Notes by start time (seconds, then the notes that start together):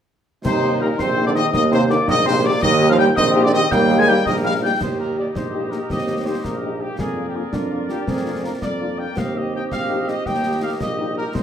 0.44 D#2 C3 D#4 C5 C6, concert bass drum, snare, crash
0.63 A#3 D#4 G4
0.81 A#2 A#3 D#4 G4 A#4 A#5
0.98 A#1 C3 C4 C5 C6, concert bass drum, snare
1.17 A#3 D#4 G4
1.26 D3 D5 D6
1.35 D#3 A#3 D#4 G4 D#5 D#6, snare
1.53 D#2 D#3 A#3 D#5 D#6, concert bass drum, snare
1.71 C3 A#3 D#4 G4 C5 C6, snare
1.89 D3 A#3 D#4 G4 D5 D6, snare
2.07 A#1 D#3 D#5 D#6, concert bass drum, snare
2.25 C3 A#3 D#4 G4 C5 C6
2.44 D3 A#3 D#4 G4 D5 D6
2.61 D#2 D#3 D#5 D#6, concert bass drum, snare, crash
2.80 A#3 D#4 G4
2.89 F3 F5 F6
2.98 G3 A#3 D#4 G4 G5 G6
3.16 A#1 D#3 C4 D#5 D#6, concert bass drum, snare
3.34 A#3 D#4 G4
3.43 D3 D5 D6
3.52 D#3 A#3 D#4 G4 D#5 D#6, snare
3.71 D#2 G3 A#3 G5 G6, concert bass drum, snare
3.89 A#3 D#4 G4, snare
3.99 G#3 G#5 G#6
4.07 G3 A#3 D#4 G4 G5 G6, snare
4.26 A#1 D#3 G3 A#4 D#5 D#6, concert bass drum, snare
4.44 F3 A#3 D#4 G4 F5 F6
4.62 G3 A#3 D#4 G4 D5 G5 G6
4.81 D#2 G4 C5 D#5, concert bass drum, snare, crash
4.99 A#3 D#4 G4 A#4
5.17 A#3 D#4 G4 D5
5.35 A#1 D#4 C5, concert bass drum, snare
5.53 A#3 D#4 G4
5.71 A#3 D#4 G4 A#4, snare
5.89 D#2 C4 D#5, concert bass drum, snare
6.07 A#3 D#4 G4
6.25 A#3 D#4 G4 C5
6.44 A#1 A#3 A#4, concert bass drum, snare
6.62 A#3 D#4 G4
6.80 A#3 D#4 G4
6.98 F2 G#4 A#4 D5, concert bass drum, snare
7.16 A#3 D4 F4
7.27 G4
7.34 A#3 D4 F4 G#4
7.52 F2 D4 F4, concert bass drum, snare
7.70 A#3 D4 F4
7.88 A#3 D4 F4 G4, snare
8.07 F2 C4 G#4, concert bass drum, snare
8.25 A#3 D4 F4
8.43 A#3 D4 F4 A#4
8.62 F2 A#3 D5, concert bass drum, snare
8.80 A#3 D4 F4
8.98 A#3 D4 F4 G5
9.16 D#2 C4 G4 D#5 F5, concert bass drum, snare, crash
9.35 A#3 D#4 G4 D#5
9.53 A#3 D#4 G4 G5
9.71 A#1 F5, concert bass drum, snare
9.89 A#3 D#4 G4
10.07 A#3 D#4 G4 D#5, snare
10.25 D#2 A#3 G5, concert bass drum, snare
10.43 A#3 D#4 G4
10.61 A#3 D#4 G4 F5
10.80 A#1 D#5, concert bass drum, snare
10.98 A#3 D#4 G4
11.16 A#3 D#4 G4 A#4
11.34 C2 D#4 C5 D#5, concert bass drum, snare